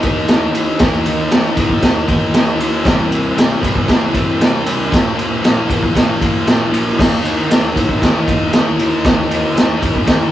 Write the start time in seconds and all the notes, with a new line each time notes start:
0.03 D#3 A#3 D#4, kick, ride
0.28 D#3 A#3 D#4, snare, ride
0.54 D#3 A#3 D#4, ride
0.79 D#3 A#3 D#4, kick, snare, ride
1.05 D#3 A#3 D#4, ride
1.30 D#3 A#3 D#4, snare, ride
1.57 D#3 A#3 D#4, kick, ride
1.70 kick
1.82 D#3 A#3 D#4, kick, snare, ride
2.07 D#3 A#3 D#4, kick, ride
2.34 D#3 A#3 D#4, snare, ride
2.59 D#3 A#3 D#4, ride
2.84 C3 G3 C4, kick, snare, ride
3.09 C3 G3 C4, ride
3.37 C3 G3 C4, snare, ride
3.62 C3 G3 C4, kick, ride
3.75 kick
3.88 C3 G3 C4, kick, snare, ride
4.14 C3 G3 C4, kick, ride
4.40 C3 G3 C4, snare, ride
4.64 C3 G3 C4, ride
4.89 A#2 F3 A#3, kick, ride
4.94 snare
5.16 A#2 F3 A#3, ride
5.42 A#2 F3 A#3, snare, ride
5.67 A#2 F3 A#3, kick, ride
5.83 kick
5.94 A#2 F3 A#3, kick, snare, ride
6.20 A#2 F3 A#3, kick, ride
6.45 A#2 F3 A#3, snare, ride
6.72 A#2 F3 A#3, ride
6.96 D#3 A#3 D#4, kick
7.00 snare, crash
7.21 D#3 A#3 D#4, ride
7.48 D#3 A#3 D#4, snare, ride
7.72 D#3 A#3 D#4, kick
7.77 ride
7.89 kick
8.00 D#3 A#3 D#4, kick, snare, ride
8.27 D#3 A#3 D#4, kick, ride
8.52 D#3 A#3 D#4, snare, ride
8.78 D#3 A#3 D#4, ride
9.04 D#3 A#3 D#4, kick, snare, ride
9.29 D#3 A#3 D#4, ride
9.54 D#3 A#3 D#4, snare, ride
9.80 D#3 A#3 D#4, kick, ride
9.95 kick
10.05 D#3 A#3 D#4, kick, snare, ride